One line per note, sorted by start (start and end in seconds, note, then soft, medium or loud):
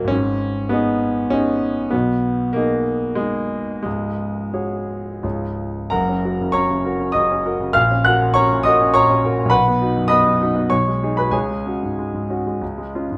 0.00 0.12 D#1 medium
0.00 0.12 D#2 medium
0.00 0.12 F#3 medium
0.00 0.13 A#3 medium
0.00 0.12 F#4 soft
0.00 0.13 A#4 soft
0.00 0.12 D#5 soft
0.04 1.85 G#1 medium
0.04 0.70 C#4 loud
0.10 1.89 G#2 medium
0.69 1.31 B3 medium
0.69 1.29 D#4 soft
0.69 1.29 G#4 soft
0.69 1.29 D#5 soft
1.30 1.91 C#4 medium
1.30 1.89 D#4 soft
1.30 1.89 G#4 soft
1.30 1.89 D#5 soft
1.91 3.81 B1 medium
1.91 3.81 B2 soft
1.91 2.54 B3 medium
2.53 3.17 A#3 medium
2.53 3.14 D#4 soft
2.53 3.15 G#4 soft
2.53 3.15 D#5 soft
3.15 3.81 G#3 medium
3.15 3.81 D#4 soft
3.15 3.81 G#4 soft
3.15 3.81 D#5 soft
3.83 5.20 C#1 soft
3.83 5.20 C#2 medium
3.83 5.23 G#3 medium
4.53 5.19 F#4 soft
4.53 5.19 G#4 soft
4.53 5.19 C#5 soft
5.23 5.90 C#1 soft
5.23 5.90 C#2 soft
5.23 5.88 F4 soft
5.23 5.88 G#4 soft
5.23 5.89 C#5 soft
5.90 7.70 F#1 medium
5.90 7.71 F#2 medium
5.90 6.24 A#4 medium
5.90 6.49 F#5 medium
5.90 6.52 A#5 medium
6.09 6.33 C#4 soft
6.25 6.38 F#4 soft
6.25 6.38 A#4 soft
6.41 6.64 C#3 soft
6.52 6.78 C#4 medium
6.52 7.10 C#5 medium
6.52 7.10 A#5 medium
6.52 7.13 C#6 loud
6.70 6.94 C#3 soft
6.85 6.98 F#4 medium
6.85 6.98 A#4 soft
7.00 7.24 C#4 soft
7.12 7.39 C#3 medium
7.12 7.70 D#5 medium
7.12 7.74 D#6 medium
7.31 7.54 C#4 medium
7.45 7.59 F#4 medium
7.45 7.59 A#4 medium
7.60 7.75 C#3 soft
7.73 9.48 A#1 medium
7.73 8.02 F5 medium
7.73 8.04 F6 loud
7.91 8.15 C#4 soft
8.05 8.20 F#4 medium
8.05 8.20 A#4 medium
8.05 8.33 F#5 medium
8.05 8.35 F#6 loud
8.21 8.45 A#2 soft
8.34 8.60 C#4 medium
8.34 8.63 C#5 medium
8.34 8.63 A#5 medium
8.34 8.64 C#6 loud
8.51 8.74 A#2 medium
8.63 8.79 F#4 medium
8.63 8.79 A#4 medium
8.63 8.92 D#5 medium
8.63 8.93 D#6 loud
8.81 9.04 C#4 medium
8.94 9.18 A#2 medium
8.94 9.48 C#5 medium
8.94 9.48 A#5 medium
8.94 9.51 C#6 loud
9.10 9.32 C#4 medium
9.24 9.37 F#4 medium
9.24 9.37 A#4 medium
9.38 9.52 A#2 medium
9.46 10.64 B1 medium
9.50 10.06 B4 medium
9.50 10.06 F#5 medium
9.50 10.08 B5 loud
9.68 9.90 B3 soft
9.82 9.94 D#4 soft
9.82 9.94 F#4 medium
9.96 10.19 F#2 soft
10.08 10.34 B3 medium
10.08 10.66 D#5 medium
10.08 10.66 B5 medium
10.08 10.69 D#6 loud
10.26 10.50 F#2 medium
10.41 10.54 D#4 soft
10.41 10.54 F#4 soft
10.56 10.71 B3 soft
10.70 11.31 B1 medium
10.70 11.13 C#5 medium
10.70 11.17 C#6 loud
10.88 11.12 G#3 soft
11.03 11.16 D#4 soft
11.03 11.17 G#4 medium
11.17 11.34 B2 soft
11.17 11.33 B4 medium
11.17 11.33 B5 medium
11.31 12.56 C#2 medium
11.31 12.89 G#4 medium
11.31 12.89 C#5 medium
11.31 12.92 G#5 medium
11.50 11.75 G#3 soft
11.66 11.80 C#4 soft
11.66 11.81 F#4 soft
11.83 12.08 G#2 soft
11.99 12.24 G#3 soft
12.14 12.39 G#2 soft
12.30 12.44 C#4 soft
12.30 12.44 F#4 soft
12.47 12.62 G#3 soft
12.62 13.18 C#2 medium
12.78 13.03 G#3 soft
12.95 13.09 C#4 soft
12.95 13.09 F4 soft
13.11 13.18 G#2 soft